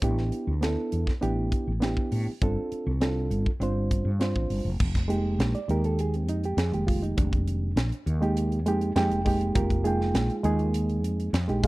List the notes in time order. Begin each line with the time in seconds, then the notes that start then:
0.02 A1 B3 D4 E4 G4, kick, closed hi-hat
0.18 snare
0.32 closed hi-hat
0.47 D2
0.61 B3 D4 E4 A4, snare, closed hi-hat
0.92 E2, closed hi-hat
1.07 muted fretless electric bass stroke, kick, snare
1.21 A1 B3 D4 E4 G4, closed hi-hat
1.52 kick, closed hi-hat
1.67 A1
1.80 B3 D4 E4 G4, snare, closed hi-hat
1.97 kick
2.12 A2, open hi-hat
2.27 muted fretless electric bass stroke
2.42 G1 C4 D4 F4 A4, kick, closed hi-hat
2.72 muted fretless electric bass stroke, closed hi-hat
2.86 C2
3.00 C4 D4 F4 A4, snare, closed hi-hat
3.30 G1, closed hi-hat
3.46 kick
3.60 G1 C4 D4 F4 C5, closed hi-hat
3.91 kick, closed hi-hat
4.05 G2
4.20 C4 D4 F4 C5, snare, closed hi-hat
4.35 A1, kick
4.50 G1, open hi-hat
4.65 F1
4.80 F1, kick, crash
4.95 kick, snare, closed hi-hat
5.08 G#3 A#3 D#4 G4, closed hi-hat
5.39 A#1, snare, closed hi-hat
5.55 D5, closed hi-hat
5.68 D#2 G#3 A#3 D#4 G4 A#4, closed hi-hat
5.84 A4, closed hi-hat
5.99 G#4, closed hi-hat
6.14 C4, closed hi-hat
6.28 F2 D#4, closed hi-hat
6.44 G4, closed hi-hat
6.57 F2 G#4, snare, closed hi-hat
6.72 F1 D#3 G#3 A#3 G4, closed hi-hat
6.87 F4, kick, open hi-hat
7.03 D#4, closed hi-hat
7.17 F1 D4, kick, closed hi-hat
7.33 kick, closed hi-hat
7.48 closed hi-hat
7.76 A#1, snare, closed hi-hat
7.92 closed hi-hat
8.06 D#2, closed hi-hat
8.21 G#3 A#3 D#4 G4, closed hi-hat
8.37 closed hi-hat
8.52 closed hi-hat
8.65 F2 G#3 A#3 D#4 G4, closed hi-hat
8.81 closed hi-hat
8.96 F2 G#3 A#3 D#4 G4 G5, snare, closed hi-hat
9.10 F1, closed hi-hat
9.25 G#3 A#3 D#4 G4, kick, open hi-hat
9.41 closed hi-hat
9.55 F1 A#3 F4 G4 A#4, kick, closed hi-hat
9.70 kick, closed hi-hat
9.84 G#3 A#3 D#4 F4 G#4 G5, closed hi-hat
10.01 snare
10.14 A#1, snare, closed hi-hat
10.30 closed hi-hat
10.43 D#2 G#3 A#3 D#4 G#4, closed hi-hat
10.59 closed hi-hat
10.74 closed hi-hat
10.89 closed hi-hat
11.03 F2, closed hi-hat
11.20 closed hi-hat
11.33 F2, snare, closed hi-hat
11.47 A#1 G#3 A#3 D#4 G4, closed hi-hat
11.63 D#2 C#3 F#3 G#3, kick, open hi-hat